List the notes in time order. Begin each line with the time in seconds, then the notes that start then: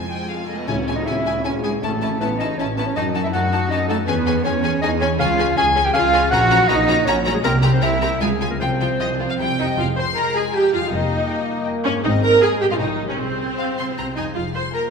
Already playing: F2 F3 G#3 C4 F4 G#4 G#5
0.09 G5
0.29 C4 G#4 F5
0.48 A3 A4 D#5
0.58 B3 B4
0.67 C#2 C#3 G#3 C#4 E4 C#5 G#5, tam-tam
0.87 G#3 E4 G#5
0.96 D#4 D#5
1.05 C#2 G#3 C#4 E4 E5 G#5
1.25 G#3 E4 G#5
1.44 C#2 G#3 C#4 E4 G#4 C#5 G#5
1.63 G#3 E4 G#4 G#5
1.82 A1 A2 A3 C#4 E4 A4 A5
2.02 E3 C#4 E4 A5
2.20 A1 A3 B3 C#4 E4 B4 A5
2.39 C#4 D#4 E4 D#5 A5
2.58 A1 C#4 E4 C#5 A5
2.77 B3 C#4 E4 B4 A5
2.86 C#4 C#5
2.96 F#2 D#4 F#4 D#5 A5
3.14 F#3 D#4 F#4 A5
3.24 E4 E5
3.33 F#2 A3 D#4 F#4 F#5 A5
3.52 D#4 F#4 A5
3.70 F#2 D#4 F#4 D#5 A5
3.88 A3 D#4 F#4 A4 A5
4.07 E2 B3 C#4 G#4 B4 G#5
4.26 E3 C#4 G#4 G#5
4.44 E2 G#3 C#4 G#4 C#5 G#5
4.63 C#4 G#4 G#5
4.82 E2 C#4 D#4 G#4 D#5 G#5
5.00 C#4 G#4 C#5 G#5
5.18 C#2 C#3 C#4 F4 G#4 F5 G#5
5.38 G#3 C#4 G#4 G#5
5.56 C#2 C#4 G#4 G#5
5.75 C#4 G#4 G#5
5.85 G4 G5
5.93 C#2 C#4 F4 G#4 F5 G#5
6.13 C#4 G#4 G#5
6.31 A#1 A#2 C#4 F#4 F#5 A#5
6.50 F#3 C#4 F#4 A#5
6.68 A#1 A#3 C#4 D#4 F#4 D#5 A#5
6.87 C#4 F#4 A#5
7.06 A#1 C#4 F#4 C#5 A#5
7.25 F#3 C#4 F#4 A#5
7.34 G#3 G#4
7.44 C2 C3 A#3 C4 G4 A#4 A#5
7.63 G3 C4 G4 A#5
7.72 C4 C5
7.82 C2 A#3 C4 E4 G4 E5 A#5
8.02 C4 G4 A#5
8.21 C#2 C#3 G#3 F4 G#4 G#5
8.40 G#3 F4 G#5
8.50 A#3 A#4
8.60 C2 C3 F3 C4 F4 C5 G5
8.80 F3 C4 F4 G5
8.99 C2 F3 F4 D#5
9.19 F3 F4
9.29 F5
9.39 C2 C3 G3 E4 G5
9.58 F2 G3 D#4 E4 G4 D#5
9.66 F3
9.70 C4
9.75 F4 G#4
9.79 F1 F2 G#3 F5
9.97 C5 C6
10.16 A#4 G#5 A#5
10.35 G#4 G#5
10.54 G4 G5 G#5
10.73 F2 F4 F5
10.79 G3
10.83 D#4 F4
10.88 A#4
10.92 F1 F2 A#3 D#4 D#5
11.29 G5
11.67 G5
11.85 G#2 C#4 C#5
11.91 G#3
11.95 D#4
12.00 C4 C5
12.04 G#1 G#2 D#4 D#5
12.23 A#4 A#5
12.42 G#3 G#4 G#5
12.62 A#2 G4 G5
12.67 G3
12.71 C#4 F4 F5
12.76 G3 D#4 C#5
12.80 A#1 A#2 D#5 G5
13.01 C3
13.05 G#3 C#4
13.10 F4 C#5
13.14 C3 C4 C5
13.19 C2 C4 C5
13.58 F5
13.78 C3 C6
13.84 G3
13.88 E4
13.93 C5
13.97 C2 C3 A#5
14.16 F2 D#4 D#5 G#5
14.22 G#3
14.27 F4
14.31 C5
14.35 F1 F2 F4 F5
14.55 C5 C6
14.73 A#3 A#4 G#5 A#5